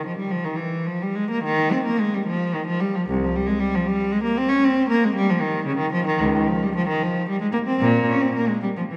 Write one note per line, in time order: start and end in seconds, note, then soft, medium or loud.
0.06 0.19 F3 medium
0.17 0.32 G3 medium
0.31 0.46 F3 medium
0.45 0.59 D#3 medium
0.56 0.86 E3 medium
0.86 1.01 F3 medium
1.02 1.17 G3 medium
1.15 1.30 G#3 medium
1.31 1.45 A#3 medium
1.44 1.72 D#3 medium
1.72 1.87 C4 medium
1.85 1.99 A#3 medium
2.00 2.14 G#3 medium
2.14 2.28 G3 medium
2.26 2.53 F3 medium
2.54 2.67 D#3 medium
2.66 2.80 F3 medium
2.80 2.93 G3 medium
2.95 3.07 F3 medium
3.09 3.21 C2 medium
3.24 3.35 F3 medium
3.36 3.47 G3 medium
3.47 3.59 G#3 medium
3.59 3.72 G3 medium
3.75 3.86 F3 medium
3.87 4.11 G3 medium
4.12 4.24 G#3 medium
4.23 4.36 A#3 medium
4.37 4.50 C4 medium
4.48 4.62 C#4 medium
4.64 4.90 C4 medium
4.89 5.02 A#3 medium
5.04 5.16 G#3 medium
5.15 5.28 G3 medium
5.30 5.42 F3 medium
5.41 5.67 D#3 medium
5.66 5.80 C#3 medium
5.78 5.93 D#3 medium
5.92 6.07 F3 medium
6.06 6.22 D#3 medium
6.21 6.36 C#2 medium
6.35 6.50 D#3 medium
6.47 6.62 F3 medium
6.63 6.77 G3 medium
6.75 6.89 F3 medium
6.88 7.02 D#3 medium
7.02 7.29 F3 medium
7.29 7.42 G3 medium
7.41 7.46 G#3 medium
7.53 7.59 A#3 medium
7.67 7.81 C4 medium
7.81 8.08 A#2 medium
8.09 8.22 C#4 medium
8.21 8.36 C4 medium
8.35 8.49 A#3 medium
8.48 8.63 G#3 medium
8.62 8.68 G3 medium
8.77 8.83 F3 medium
8.92 8.97 E3 medium